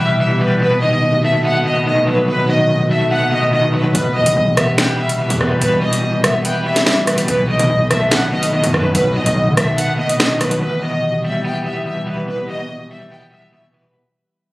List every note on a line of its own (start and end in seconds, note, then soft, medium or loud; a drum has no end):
0.00 0.60 B2 medium
0.00 0.19 E3 medium
0.00 0.58 E3 medium
0.00 0.58 G3 medium
0.00 0.62 B3 medium
0.00 7.24 B3 medium
0.00 0.58 G4 medium
0.00 0.62 B4 loud
0.00 0.16 E5 medium
0.19 0.62 E3 medium
0.19 0.37 E5 medium
0.41 0.61 G3 medium
0.41 0.58 B4 medium
0.61 1.64 B2 loud
0.61 3.92 D#3 medium
0.61 3.92 A3 medium
0.61 3.92 F#4 medium
0.61 0.79 B4 loud
0.82 1.85 D#3 medium
0.82 1.21 D#5 medium
1.24 2.28 A3 medium
1.24 1.41 E5 medium
1.45 2.49 B3 loud
1.45 1.62 F#5 medium
1.66 2.27 B2 medium
1.66 1.83 D#5 medium
1.86 2.48 D#3 medium
1.86 2.04 D#5 medium
2.07 3.11 F#3 medium
2.07 2.25 B4 medium
2.28 3.31 B2 medium
2.28 2.45 B4 loud
2.49 3.52 D#3 medium
2.49 2.88 D#5 medium
2.91 3.95 A3 medium
2.91 3.08 E5 medium
3.11 3.95 B3 loud
3.11 3.29 F#5 medium
3.32 3.93 B2 medium
3.32 3.50 D#5 medium
3.53 3.95 D#3 medium
3.53 3.70 D#5 medium
3.74 3.95 F#3 medium
3.74 3.92 B4 medium
3.95 4.17 E1 loud
3.95 4.98 B2 medium
3.95 7.25 E3 medium
3.95 7.25 G3 medium
3.95 7.25 G4 medium
3.95 4.12 B4 loud
3.95 closed hi-hat medium
4.16 4.26 E2 loud
4.16 5.19 E3 medium
4.16 4.55 D#5 medium
4.26 4.36 E1 loud
4.26 closed hi-hat medium
4.37 4.57 B1 loud
4.57 4.97 E1 loud
4.57 5.61 B3 medium
4.57 4.74 E5 medium
4.57 cross-stick loud
4.57 closed hi-hat medium
4.78 5.82 B4 loud
4.78 4.96 G5 medium
4.78 finger snap loud
4.78 snare loud
4.78 closed hi-hat medium
4.99 5.60 B2 medium
4.99 5.16 E5 medium
5.09 closed hi-hat medium
5.19 5.81 E3 medium
5.19 5.37 E5 medium
5.30 5.53 E2 loud
5.30 closed hi-hat medium
5.41 6.45 G3 medium
5.41 5.58 B4 medium
5.41 cross-stick medium
5.51 5.61 B2 loud
5.61 6.02 E1 loud
5.61 6.65 B2 loud
5.61 5.79 B4 loud
5.61 closed hi-hat medium
5.82 6.86 E3 medium
5.82 6.21 D#5 medium
5.93 closed hi-hat medium
6.24 7.09 E1 loud
6.24 7.28 B3 medium
6.24 6.41 E5 medium
6.24 cross-stick loud
6.24 closed hi-hat medium
6.45 7.28 B4 loud
6.45 6.62 G5 medium
6.45 closed hi-hat medium
6.65 7.27 B2 medium
6.65 6.83 E5 medium
6.76 snare medium
6.76 closed hi-hat medium
6.86 7.28 E3 medium
6.86 7.03 E5 medium
6.86 finger snap medium
6.86 snare loud
7.07 7.27 G1 loud
7.07 7.28 G3 medium
7.07 7.25 B4 medium
7.07 cross-stick medium
7.07 closed hi-hat medium
7.18 closed hi-hat medium
7.28 7.58 B1 loud
7.28 8.31 B2 loud
7.28 10.58 D#3 medium
7.28 10.58 A3 medium
7.28 10.58 B3 medium
7.28 10.58 F#4 medium
7.28 7.46 B4 loud
7.28 closed hi-hat medium
7.49 8.52 D#3 medium
7.49 7.88 D#5 medium
7.59 7.69 B2 loud
7.59 closed hi-hat medium
7.70 7.90 B1 loud
7.90 8.61 B1 loud
7.90 8.95 A3 medium
7.90 8.08 E5 medium
7.90 cross-stick loud
7.90 closed hi-hat medium
8.11 9.16 B3 loud
8.11 8.29 F#5 medium
8.11 finger snap medium
8.11 snare loud
8.11 closed hi-hat medium
8.33 8.93 B2 medium
8.33 8.50 D#5 medium
8.43 closed hi-hat medium
8.53 9.14 D#3 medium
8.53 8.71 D#5 medium
8.64 8.94 F#2 loud
8.64 closed hi-hat medium
8.74 9.78 F#3 medium
8.74 8.91 B4 medium
8.74 cross-stick medium
8.95 9.17 B1 loud
8.95 9.98 B2 loud
8.95 9.12 B4 loud
8.95 closed hi-hat medium
9.16 9.25 B2 loud
9.16 10.19 D#3 medium
9.16 9.55 D#5 medium
9.26 9.48 B1 loud
9.26 closed hi-hat medium
9.47 9.57 D#3 loud
9.57 9.78 B1 loud
9.57 10.62 A3 medium
9.57 9.75 E5 medium
9.57 cross-stick loud
9.57 closed hi-hat medium
9.78 10.61 B3 loud
9.78 9.95 F#5 medium
9.78 closed hi-hat medium
9.99 10.61 B2 medium
9.99 10.16 D#5 medium
10.09 closed hi-hat medium
10.19 10.61 D#3 medium
10.19 10.37 D#5 medium
10.19 finger snap medium
10.19 snare loud
10.41 10.61 F#3 medium
10.41 10.58 B4 medium
10.41 cross-stick medium
10.41 closed hi-hat medium
10.51 closed hi-hat medium
10.62 11.65 E2 medium
10.62 13.92 E3 medium
10.62 13.92 G3 medium
10.62 13.92 B3 medium
10.62 13.92 G4 medium
10.62 10.79 B4 loud
10.83 11.85 B2 medium
10.83 11.22 D#5 medium
11.24 12.28 G3 medium
11.24 11.42 E5 medium
11.45 12.49 B3 loud
11.45 11.63 G5 medium
11.66 12.27 E2 medium
11.66 11.83 E5 medium
11.87 12.48 B2 medium
11.87 12.04 E5 medium
12.07 13.11 E3 medium
12.07 12.25 B4 medium
12.28 13.30 E2 medium
12.28 12.46 B4 medium
12.49 13.52 B2 medium
12.49 12.88 D#5 medium
12.91 13.95 G3 medium
12.91 13.08 E5 medium
13.11 13.95 B3 medium
13.11 13.29 G5 medium
13.32 13.95 E2 medium
13.32 13.50 E5 medium
13.53 13.95 B2 medium
13.53 13.71 E5 medium
13.74 13.95 E3 medium
13.74 13.91 B4 medium